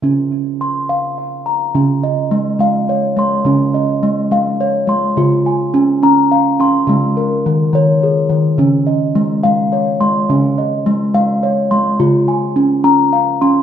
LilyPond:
<<
  \new Staff \with { instrumentName = "Steel tongue drum" } { \time 6/8 \key des \major \tempo 4. = 70 << { r4 c'''4. bes''8~ | bes''8 ees''4. des''8 c'''8~ | c'''8 ees''4. des''8 c'''8~ | c'''8 aes''4. f''8 c'''8~ |
c'''8 bes'4. aes'4~ | aes'8 ees''4. des''8 c'''8~ | c'''8 ees''4. des''8 c'''8~ | c'''8 aes''4. f''8 c'''8 | } \\ { des'4 r8 f''4 r8 | des'4 r8 f''4 r8 | des'4 r8 f''4 r8 | f'4 r8 bes''4 r8 |
aes4 r8 des''4 r8 | des'4 r8 f''4 r8 | des'4 r8 f''4 r8 | f'4 r8 bes''4 r8 | } >> }
  \new Staff \with { instrumentName = "Steel tongue drum" } { \clef bass \time 6/8 \key des \major des2. | des4 aes8 aes4 aes8 | des4 aes8 aes4 aes8 | des4 des'8 des'4 des'8 |
des4 ees8 ees4 ees8 | des4 aes8 aes4 aes8 | des4 aes8 aes4 aes8 | des4 des'8 des'4 des'8 | }
>>